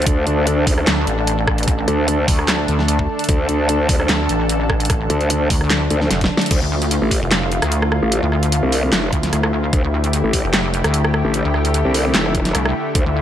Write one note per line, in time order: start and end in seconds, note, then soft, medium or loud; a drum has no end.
0.00 6.47 D3 medium
0.00 6.47 A3 medium
0.00 6.47 D4 medium
0.00 6.51 D4 medium
0.00 closed hi-hat medium
0.06 0.25 D2 loud
0.06 6.49 A4 medium
0.06 kick loud
0.06 closed hi-hat medium
0.27 0.65 D2 medium
0.27 closed hi-hat medium
0.47 closed hi-hat medium
0.67 0.86 D2 loud
0.67 kick loud
0.67 open hi-hat medium
0.78 cross-stick medium
0.87 1.06 D2 loud
0.87 snare loud
0.87 clap medium
0.87 closed hi-hat medium
1.07 1.86 A1 medium
1.07 closed hi-hat medium
1.27 closed hi-hat medium
1.47 kick medium
1.47 cross-stick medium
1.58 closed hi-hat soft
1.63 closed hi-hat medium
1.68 kick loud
1.68 closed hi-hat medium
1.88 2.26 D2 medium
1.88 closed hi-hat medium
2.08 closed hi-hat medium
2.28 2.67 D2 medium
2.28 kick loud
2.28 open hi-hat loud
2.39 cross-stick medium
2.48 snare loud
2.48 clap medium
2.48 closed hi-hat medium
2.68 3.07 D2 loud
2.68 closed hi-hat medium
2.79 snare soft
2.88 closed hi-hat medium
2.99 kick medium
3.19 closed hi-hat soft
3.24 closed hi-hat medium
3.29 3.47 D2 loud
3.29 kick loud
3.29 closed hi-hat medium
3.49 3.88 D2 medium
3.49 closed hi-hat medium
3.69 closed hi-hat medium
3.89 4.08 D2 loud
3.89 kick loud
3.89 open hi-hat loud
4.00 cross-stick medium
4.09 4.28 D2 loud
4.09 snare loud
4.09 clap medium
4.09 closed hi-hat medium
4.29 5.08 A1 loud
4.29 closed hi-hat medium
4.49 closed hi-hat medium
4.70 kick medium
4.70 cross-stick medium
4.80 closed hi-hat soft
4.85 closed hi-hat medium
4.90 kick loud
4.90 cross-stick medium
4.90 closed hi-hat medium
5.10 5.49 D2 medium
5.10 closed hi-hat medium
5.21 closed hi-hat soft
5.30 closed hi-hat medium
5.50 5.89 D2 loud
5.50 kick loud
5.50 open hi-hat loud
5.61 cross-stick soft
5.70 snare loud
5.70 clap loud
5.70 closed hi-hat medium
5.90 6.09 D2 loud
5.90 closed hi-hat medium
6.01 snare soft
6.11 6.29 F1 loud
6.11 snare medium
6.11 closed hi-hat medium
6.21 kick medium
6.21 snare medium
6.21 closed hi-hat soft
6.37 snare medium
6.37 closed hi-hat soft
6.46 closed hi-hat medium
6.51 6.60 D2 medium
6.51 13.22 D3 medium
6.51 13.22 A3 medium
6.51 13.22 E4 medium
6.51 9.72 F4 medium
6.51 kick loud
6.51 closed hi-hat medium
6.51 crash loud
6.62 7.00 D2 loud
6.82 closed hi-hat medium
6.91 closed hi-hat medium
7.02 7.20 A1 medium
7.11 kick medium
7.11 open hi-hat medium
7.22 7.61 F1 loud
7.31 snare loud
7.31 clap medium
7.31 closed hi-hat medium
7.52 closed hi-hat medium
7.62 8.01 D2 loud
7.62 cross-stick medium
7.62 closed hi-hat medium
7.72 closed hi-hat medium
7.82 cross-stick medium
7.92 cross-stick medium
8.03 8.21 A1 loud
8.12 closed hi-hat medium
8.23 8.61 D2 loud
8.32 cross-stick soft
8.43 closed hi-hat medium
8.52 closed hi-hat medium
8.63 8.91 C2 medium
8.72 open hi-hat medium
8.92 9.11 F1 loud
8.92 snare loud
8.92 clap loud
8.92 closed hi-hat medium
9.13 9.31 D2 loud
9.13 kick medium
9.13 closed hi-hat medium
9.23 snare soft
9.23 closed hi-hat medium
9.33 9.72 D2 loud
9.33 cross-stick soft
9.33 closed hi-hat medium
9.43 cross-stick medium
9.73 9.82 D2 loud
9.73 12.94 G4 medium
9.73 kick loud
9.73 closed hi-hat medium
9.84 10.22 D2 loud
10.04 closed hi-hat medium
10.13 closed hi-hat medium
10.24 10.42 A1 medium
10.33 kick medium
10.33 open hi-hat medium
10.44 10.83 F1 loud
10.54 snare loud
10.54 clap medium
10.54 closed hi-hat medium
10.74 closed hi-hat medium
10.84 11.23 D2 loud
10.84 cross-stick medium
10.84 closed hi-hat medium
10.94 closed hi-hat medium
11.04 cross-stick medium
11.14 cross-stick medium
11.25 11.43 A1 loud
11.34 closed hi-hat medium
11.45 11.83 D2 medium
11.54 cross-stick medium
11.65 closed hi-hat medium
11.74 closed hi-hat medium
11.85 12.13 C2 medium
11.94 open hi-hat medium
12.14 12.53 F1 loud
12.14 snare loud
12.14 clap medium
12.14 closed hi-hat medium
12.35 kick medium
12.35 closed hi-hat medium
12.45 snare soft
12.45 closed hi-hat medium
12.55 12.74 C2 loud
12.55 cross-stick medium
12.55 closed hi-hat medium
12.65 cross-stick medium
12.95 13.04 D2 loud
12.95 13.22 F4 medium
12.95 kick loud
12.95 closed hi-hat medium
13.06 13.22 D2 loud